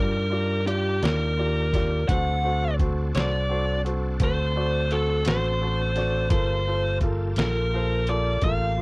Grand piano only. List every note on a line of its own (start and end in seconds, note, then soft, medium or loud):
0.00 0.22 F4 soft
0.00 0.23 G4 soft
0.00 0.23 D5 medium
0.30 0.57 F4 soft
0.30 0.58 G4 soft
0.30 0.59 D5 medium
0.67 0.93 F4 soft
0.67 0.93 G4 soft
0.67 0.94 D5 medium
1.02 1.29 F4 soft
1.02 1.29 G4 soft
1.02 1.29 D5 soft
1.37 1.64 F4 soft
1.37 1.65 G4 soft
1.37 1.65 D5 medium
1.73 2.00 F4 medium
1.73 2.00 G4 soft
1.73 2.00 D5 medium
2.09 2.35 F#4 medium
2.09 2.36 A4 soft
2.09 2.36 C5 medium
2.44 2.70 F#4 soft
2.44 2.70 A4 soft
2.44 2.71 C5 medium
2.80 3.06 F#4 soft
2.80 3.06 A4 soft
2.80 3.06 C5 medium
3.16 3.41 F#4 soft
3.16 3.41 A4 soft
3.16 3.42 C5 medium
3.49 3.76 F#4 soft
3.49 3.76 A4 soft
3.49 3.76 C5 medium
3.85 4.11 F#4 soft
3.85 4.12 A4 soft
3.85 4.12 C5 medium
4.20 4.46 F#4 soft
4.20 4.47 A4 soft
4.20 4.47 C5 medium
4.56 4.82 F#4 soft
4.56 4.82 A4 soft
4.56 4.83 D5 medium
4.91 5.17 F#4 soft
4.91 5.18 A4 soft
4.91 5.18 C5 medium
5.26 5.52 F#4 soft
5.26 5.52 A4 soft
5.26 5.53 C5 medium
5.61 5.88 F#4 soft
5.61 5.88 A4 soft
5.61 5.88 C5 medium
5.96 6.23 F#4 soft
5.96 6.23 A4 soft
5.96 6.23 D5 medium
6.30 6.57 F4 medium
6.30 6.58 A4 medium
6.30 6.58 A#4 medium
6.67 6.93 F4 soft
6.67 6.94 A4 soft
6.67 6.94 C5 medium
7.03 7.29 F4 medium
7.03 7.29 A4 medium
7.03 7.30 A#4 medium
7.38 7.64 F4 soft
7.38 7.65 A4 soft
7.38 7.65 A#4 medium
7.73 7.99 F4 soft
7.73 8.00 A4 soft
7.73 8.00 C5 medium
8.08 8.35 F4 soft
8.08 8.35 A4 soft
8.08 8.35 A#4 medium
8.44 8.70 F4 medium
8.44 8.70 A4 soft
8.44 8.71 A#4 medium
8.78 8.82 F4 soft